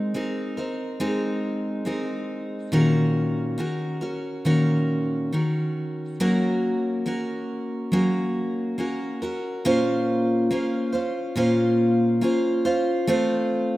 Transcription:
0.00 0.13 G#3 medium
0.00 0.14 C4 medium
0.00 0.15 D#4 medium
0.00 0.16 A#4 medium
0.14 0.57 G#3 soft
0.14 0.57 C4 soft
0.14 0.57 D#4 medium
0.14 0.56 A#4 medium
0.57 0.99 C4 soft
0.57 1.00 D#4 soft
0.57 1.00 A#4 soft
1.00 1.84 G#3 medium
1.00 1.85 C4 medium
1.00 1.86 D#4 medium
1.00 1.87 A#4 medium
1.85 2.72 G#3 soft
1.85 2.72 C4 medium
1.85 2.73 D#4 medium
1.85 2.73 A#4 medium
2.72 3.58 A#2 medium
2.72 3.56 D#3 medium
2.72 3.58 C#4 medium
2.72 3.59 F#4 medium
2.72 3.60 A#4 medium
3.58 4.01 D#3 medium
3.58 4.01 C#4 soft
3.58 4.01 F#4 medium
3.58 4.00 A#4 medium
4.01 4.45 C#4 soft
4.01 4.45 F#4 soft
4.01 4.45 A#4 soft
4.45 5.33 A#2 medium
4.45 5.31 D#3 medium
4.45 5.33 C#4 medium
4.45 5.34 F#4 medium
4.45 5.34 A#4 medium
5.33 6.20 D#3 medium
5.33 6.20 C#4 soft
5.33 6.21 F#4 medium
5.33 6.21 A#4 soft
6.20 7.07 F#3 medium
6.20 7.05 A#3 medium
6.20 7.06 C#4 medium
6.20 7.06 F#4 medium
6.20 7.07 A#4 medium
7.06 7.92 A#3 soft
7.06 7.93 C#4 soft
7.06 7.92 F#4 medium
7.06 7.93 A#4 medium
7.92 8.79 F#3 medium
7.92 8.77 A#3 medium
7.92 8.78 C#4 medium
7.92 8.79 F#4 medium
7.92 8.80 A#4 medium
8.78 9.22 A#3 soft
8.78 9.22 C#4 medium
8.78 9.22 F#4 soft
8.78 9.21 A#4 medium
9.22 9.65 C#4 soft
9.22 9.65 F#4 medium
9.22 9.65 A#4 medium
9.65 10.51 A#2 medium
9.65 10.49 A#3 medium
9.65 10.50 C#4 medium
9.65 10.52 F4 medium
9.65 10.52 C5 medium
10.51 10.94 A#3 medium
10.51 10.94 C#4 medium
10.51 10.93 F4 medium
10.51 10.91 C5 medium
10.92 11.36 C#4 soft
10.92 11.36 F4 soft
10.92 11.36 C5 soft
11.36 12.22 A#2 medium
11.36 12.20 A#3 medium
11.36 12.21 C#4 medium
11.36 12.22 F4 medium
11.36 12.24 C5 medium
12.21 12.65 A#3 medium
12.21 12.66 C#4 medium
12.21 12.65 F4 medium
12.21 12.64 C5 medium
12.65 13.08 C#4 soft
12.65 13.07 F4 medium
12.65 13.08 C5 medium
13.07 13.77 A3 medium
13.07 13.77 C4 medium
13.07 13.77 F4 medium
13.07 13.77 C5 medium

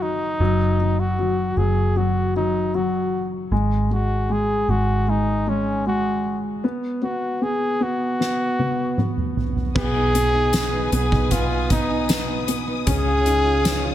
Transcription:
0.00 0.36 F#1 medium
0.00 0.40 F#3 soft
0.00 1.01 D#4 medium
0.40 1.53 F#1 medium
0.40 0.79 F#3 medium
0.80 1.17 F#3 soft
1.00 1.59 F#4 medium
1.19 1.56 F#3 soft
1.57 3.48 F#1 medium
1.57 1.95 F#3 soft
1.57 1.99 G#4 medium
1.96 2.34 F#3 soft
1.96 2.35 F#4 medium
2.36 2.73 F#3 soft
2.36 2.77 D#4 medium
2.74 3.50 F#3 soft
2.74 3.33 F#4 medium
3.51 4.64 G#1 medium
3.51 3.89 G#3 medium
3.90 4.28 G#3 soft
3.90 4.34 F#4 medium
4.29 4.67 G#3 soft
4.29 4.71 G#4 medium
4.68 6.59 G#1 medium
4.68 5.06 G#3 soft
4.68 5.11 F#4 medium
5.07 5.45 G#3 soft
5.07 5.50 D#4 medium
5.47 5.84 G#3 soft
5.47 5.87 C#4 medium
5.86 6.61 G#3 soft
5.86 6.41 F#4 medium
6.64 7.01 B3 medium
7.02 7.40 B3 soft
7.02 7.44 F#4 medium
7.41 7.79 B3 soft
7.41 7.84 G#4 medium
7.80 8.18 B3 soft
7.80 9.37 F#4 medium
8.20 8.58 B3 soft
8.20 snare soft
8.59 8.97 B3 soft
8.59 high tom medium
8.97 9.73 B3 soft
8.97 mid tom medium
9.17 mid tom medium
9.37 floor tom medium
9.56 floor tom medium
9.75 10.88 B1 medium
9.75 11.30 B2 medium
9.75 10.13 B3 medium
9.75 10.89 G#4 loud
9.75 12.84 B4 medium
9.75 12.84 G#5 medium
9.75 13.95 D#6 medium
9.75 kick loud
9.75 crash medium
9.96 10.34 D#4 soft
10.15 10.52 B3 soft
10.15 10.53 B3 medium
10.15 closed hi-hat medium
10.34 10.72 D#4 medium
10.53 10.91 B3 soft
10.53 10.91 B3 medium
10.53 snare loud
10.53 closed hi-hat medium
10.53 tambourine medium
10.73 11.11 D#4 medium
10.92 12.83 B1 loud
10.92 11.30 B3 soft
10.92 11.69 B3 soft
10.92 11.33 G#4 medium
10.92 closed hi-hat medium
11.12 11.50 D#4 medium
11.12 kick medium
11.31 12.95 B2 medium
11.31 11.70 B3 medium
11.31 11.70 F4 medium
11.31 kick medium
11.31 closed hi-hat medium
11.51 11.90 D#4 medium
11.70 12.08 B3 medium
11.70 12.45 D#4 medium
11.70 kick medium
11.70 closed hi-hat medium
11.91 12.28 D#4 medium
12.09 12.47 B3 medium
12.09 snare loud
12.09 closed hi-hat medium
12.09 tambourine medium
12.29 12.67 D#4 medium
12.48 12.86 B3 soft
12.48 12.95 B3 medium
12.48 closed hi-hat medium
12.68 13.06 D#4 medium
12.87 13.95 C#2 medium
12.87 13.95 C#3 medium
12.87 13.25 C#4 medium
12.87 13.95 G#4 loud
12.87 13.95 C#5 medium
12.87 13.95 F5 medium
12.87 kick medium
12.87 closed hi-hat medium
13.07 13.44 F4 soft
13.26 13.64 C#4 soft
13.26 13.65 D#4 medium
13.26 closed hi-hat medium
13.46 13.83 F4 medium
13.65 13.95 C#4 soft
13.65 13.95 D#4 medium
13.65 snare loud
13.65 closed hi-hat loud
13.65 tambourine medium
13.84 13.95 F4 medium

